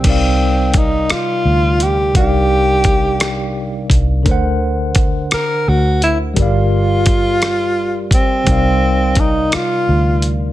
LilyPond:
<<
  \new Staff \with { instrumentName = "Tine electric piano" } { \time 6/8 \key c \minor \tempo 4. = 57 <c g ees' bes' d'' f''>2. | <c g d' ees' bes' d'' f''>2. | <d d' bes' c'' fis''>2. | <g g' bes' d'' f''>2. |
<c g ees' bes' d'' f''>2. | }
  \new Staff \with { instrumentName = "Tenor saxophone" } { \time 6/8 \key c \minor c'4 ees'8 f'4 g'8 | g'2~ g'8 r8 | r4. bes'8 fis'8 e'8 | f'2~ f'8 c'8~ |
c'4 ees'8 f'4 r8 | }
  \new Staff \with { instrumentName = "Fingered electric bass" } { \clef bass \time 6/8 \key c \minor c,4. r8 d,4 | c,2~ c,8 c,8 | d,4. r8 d,4 | g,,2~ g,,8 bes,,8 |
c,4. r8 d,4 | }
  \new DrumStaff \with { instrumentName = "Drums" } \drummode { \time 6/8 <cymc hh bd>4 <hh bd>8 <hh ss>4 hh8 | <hh bd>4 <hh bd>8 <hh ss>4 <hh bd>8 | <hh bd>4 <hh bd>8 <hh ss>4 hh8 | <hh bd>4 <hh bd>8 <hh ss>4 <hh bd>8 |
<hh bd>4 <hh bd>8 <hh ss>4 hh8 | }
>>